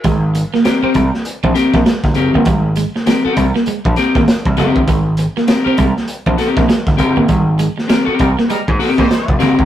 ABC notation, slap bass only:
X:1
M:4/4
L:1/16
Q:"Swing 16ths" 1/4=99
K:Ab
V:1 name="Slap bass" clef=bass
A,,,3 z3 C,, z2 B,,, z B,,, z G,,, _G,,, =G,,, | A,,,3 z3 C,, z2 B,,, z A,,, z C,, _G,,, =G,,, | A,,,3 z3 C,, z2 B,,, z B,,, z G,,, _G,,, =G,,, | A,,,3 z3 C,, z2 A,, z A,, z F,,, _G,,, =G,,, |]